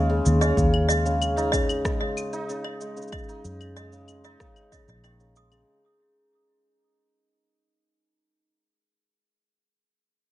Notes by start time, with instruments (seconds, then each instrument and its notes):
Already playing: fingered electric bass D#2, hammered dulcimer G#3 C#4
0.10 hammered dulcimer C#3
0.26 fingered electric bass D#2, shaker
0.41 hammered dulcimer C#4, toy piano D#5, shaker
0.57 fingered electric bass D#2, hammered dulcimer C#3, kick, shaker
0.74 claves
0.89 hammered dulcimer G#3, toy piano D#5, shaker
1.06 hammered dulcimer C#3, shaker
1.22 claves, shaker
1.37 hammered dulcimer D#4, shaker
1.52 hammered dulcimer C#3, toy piano D#5, kick, shaker
1.69 claves, shaker
1.85 hammered dulcimer G#3, kick, cross-stick, shaker
2.01 hammered dulcimer C#3, toy piano D#5
2.17 claves, shaker
2.33 hammered dulcimer D#4, shaker
2.49 hammered dulcimer C#3, shaker
2.64 toy piano D#5, claves
2.81 hammered dulcimer G#3, shaker
2.96 hammered dulcimer C#3, shaker
3.02 shaker
3.08 shaker
3.12 toy piano D#5, kick, claves, shaker
3.24 shaker
3.29 hammered dulcimer D#4, shaker
3.44 fingered electric bass F#2, hammered dulcimer C#3, shaker
3.61 claves, shaker
3.76 hammered dulcimer G#3, toy piano D#5, shaker
3.92 hammered dulcimer C#3, shaker
4.08 claves, shaker
4.24 hammered dulcimer D#4, toy piano D#5, shaker
4.40 hammered dulcimer C#3, kick, cross-stick, shaker
4.56 claves, shaker
4.72 hammered dulcimer C#3, toy piano D#5, kick, shaker
4.88 fingered electric bass A#1, hammered dulcimer D#4, toy piano D#5, shaker
5.04 hammered dulcimer D#3, toy piano D#5, claves, shaker
5.20 hammered dulcimer C#3, shaker
5.36 hammered dulcimer G#3, toy piano D#6, shaker
5.52 hammered dulcimer C#3, claves, shaker